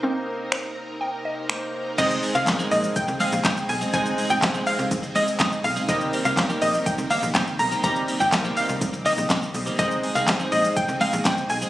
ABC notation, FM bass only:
X:1
M:4/4
L:1/16
Q:1/4=123
K:Ablyd
V:1 name="FM bass" clef=bass
z16 | C,,2 z C,, z2 B,,,2 z C,, z B,,, C,,2 =B,,,2 | C,, z2 A,,, z B,,, z C,, C,,2 z4 =B,,,2 | C,,2 z C,, z2 B,,,2 z C,, z B,,, C,,2 =B,,,2 |
C,, z2 G,,, z B,,, z C,, C,,2 B,,, B,,, C,, z =B,,,2 | C,,2 z C,, z2 B,,,2 z C,, z B,,, C,,2 =B,,,2 |]